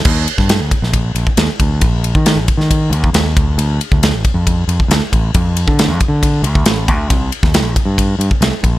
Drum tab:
CC |x---------------|----------------|----------------|----------------|
RD |--x-x-x-x-x-x-x-|x-x-x-x-x-x-x-x-|x-x-x-x-x-x-x-x-|x-x-x-x-x-x-x-x-|
SD |---oo--o----o---|----o--o----o---|----o-------o---|----o-------o---|
BD |o--o--o-o--o--o-|o--o--o-o--o--o-|---o--o-o--o--o-|o--o--o-o--o--o-|

CC |----------------|
RD |x-x-x-x-x-x-x-x-|
SD |---oo-------o---|
BD |o--o--o-o--o--o-|